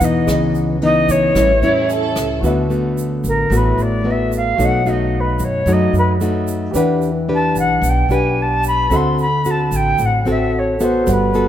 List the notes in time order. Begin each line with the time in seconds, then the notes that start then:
Already playing: B2 B4 D5
0.00 E2 E3 B3 D#4, kick, closed hi-hat, shaker
0.04 D#5
0.26 C#2 C#3 G#4 B4 D#5, kick, cross-stick, closed hi-hat, shaker
0.54 closed hi-hat, shaker
0.81 E3 B3 D#4 D#5, closed hi-hat
1.08 C#5, kick, closed hi-hat, shaker
1.32 A1 A2 G3 E4 G4, kick, cross-stick, closed hi-hat, shaker
1.36 C#4 E4 B4 C#5
1.61 E2 G3 C#4 E4, closed hi-hat, shaker
1.81 G#4
1.88 A4, closed hi-hat, shaker
2.16 C#2, cross-stick, shaker
2.40 D2 D3 A3 B3 F#4 A4, shaker
2.45 B4 E5
2.70 A3 B3 F#4, shaker
2.98 shaker
3.24 A1 A#4, shaker
3.50 A1 A2 A3 B3 F#4, shaker
3.57 B4
3.78 A1, shaker
3.82 D5
4.04 A3 B3 F#4 A4 B4 E5
4.11 E5
4.32 shaker
4.37 F5
4.56 B1 B2 A3 D#4 F#4 A4, shaker
4.60 C#5 D#5
4.65 F#5
4.86 A3 D#4 F#4, shaker
4.91 D#5
5.20 B4
5.39 F#2, shaker
5.44 C#5
5.66 F#2 F#3 A3 D#4 F#4, shaker
5.73 D#5
5.93 F#2, shaker
5.98 B4
6.21 A3 D#4 F#4, shaker
6.48 shaker
6.71 E2 G4 B4 D5, shaker
6.75 E3 D4 G4 B4 F#5
7.02 shaker
7.29 D4 G4 B4
7.35 A5
7.55 B1, shaker
7.59 F#5
7.82 B1 B2, shaker
7.89 G5
8.09 B1 D4 G4 B4, shaker
8.14 G#5
8.42 A5
8.64 B5, shaker
8.88 D2 D3 C4 F#4 A4 C5, shaker
8.93 E5 F#5 C6
9.18 B5, shaker
9.45 C4 F#4 A4, shaker
9.51 A5
9.71 A1, shaker
9.76 G5
9.98 A1 A2, shaker
10.06 F#5
10.25 A1 C4 F#4 A4, shaker
10.30 E5
10.59 C#5
10.79 B3 F#4 A4 C5 E5 F#5, shaker
10.84 C5
11.03 G1 G3 A4 B4, kick, closed hi-hat, shaker
11.08 D5 F#5
11.13 B4
11.34 B3 F#4 A4, closed hi-hat, shaker